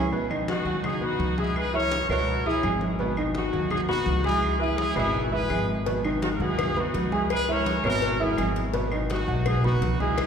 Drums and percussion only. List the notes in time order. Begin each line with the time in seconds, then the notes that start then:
0.13 high conga
0.30 high conga, claves
0.48 high conga
0.67 high conga
0.84 high conga, low conga, claves
1.02 high conga
1.20 high conga
1.38 high conga
1.56 high conga, claves
1.74 high conga
1.92 high conga
2.10 high conga, claves
2.27 high conga
2.46 high conga
2.63 high conga, claves
2.81 high conga
2.99 high conga
3.17 high conga, claves
3.35 high conga
3.53 high conga
3.71 high conga, low conga, claves
3.89 high conga, low conga
4.06 high conga
4.24 high conga
4.42 high conga, claves
4.60 high conga
4.78 high conga
4.96 high conga, claves
5.14 high conga
5.32 high conga
5.50 high conga, claves
5.86 cowbell, high conga
6.04 high conga, claves
6.22 cowbell, high conga
6.40 high conga
6.59 cowbell, high conga, low conga, claves
6.77 high conga, low conga
6.94 cowbell, high conga
7.12 high conga
7.30 cowbell, claves
7.48 high conga
7.66 cowbell, high conga
7.84 high conga, claves
8.02 cowbell, high conga
8.20 high conga
8.38 cowbell, high conga, claves
8.56 cowbell
8.74 cowbell, high conga
8.92 high conga, claves
9.10 cowbell, high conga
9.28 high conga
9.46 cowbell, high conga, low conga, claves
9.64 high conga, low conga
9.82 cowbell, high conga
10.00 high conga
10.18 cowbell, high conga, claves